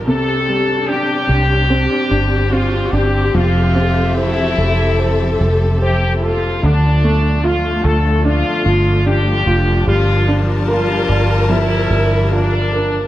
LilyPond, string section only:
\new Staff \with { instrumentName = "String section" } { \time 4/4 \key f \major \tempo 4 = 74 <c' d' g'>1 | <f a' e''>1 | <f a d'>1 | <g bes' a''>1 | }